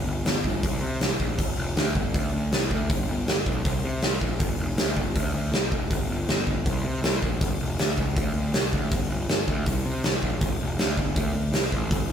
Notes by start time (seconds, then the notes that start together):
0.06 G1
0.25 G1, snare, open hi-hat
0.44 G1, kick
0.63 C2, kick, open hi-hat
0.81 C3
1.01 C2, snare, open hi-hat
1.19 A#1, kick
1.38 G1, kick, open hi-hat
1.56 F1
1.76 D2, snare, open hi-hat
1.95 G1, kick
2.14 D2, kick, open hi-hat
2.33 D2
2.52 C2, snare, open hi-hat
2.71 D2, kick
2.90 G1, kick, open hi-hat
3.08 G1
3.27 G1, snare, open hi-hat
3.46 B1, kick
3.65 C2, kick, open hi-hat
3.84 C3
4.02 C2, snare, open hi-hat
4.21 A#1, kick
4.40 G1, kick, open hi-hat
4.58 F1
4.77 D2, snare, open hi-hat
4.97 G1, kick
5.15 D2, kick, open hi-hat
5.34 D2
5.52 C2, snare, open hi-hat
5.72 F1, kick
5.90 G1, kick, open hi-hat
6.09 G1
6.29 G1, snare, open hi-hat
6.47 G1, kick
6.66 C2, kick, open hi-hat
6.84 C3
7.02 C2, snare, open hi-hat
7.22 A#1, kick
7.41 G1, kick, open hi-hat
7.60 F1
7.78 D2, snare, open hi-hat
7.98 C#2, kick
8.17 D2, kick, open hi-hat
8.34 D2
8.53 C2, snare, open hi-hat
8.73 D2, kick
8.91 G1, kick, open hi-hat
9.09 G1
9.29 G1, snare, open hi-hat
9.48 D2, kick
9.66 C2, kick, open hi-hat
9.85 C3
10.03 C2, snare, open hi-hat
10.22 A#1, kick
10.41 G1, kick, open hi-hat
10.60 F1
10.78 D2, snare, open hi-hat
10.97 G1, kick
11.16 D2, kick, open hi-hat
11.34 D2
11.53 C2, snare, open hi-hat
11.72 A1, kick
11.91 G1, kick, open hi-hat
12.09 G1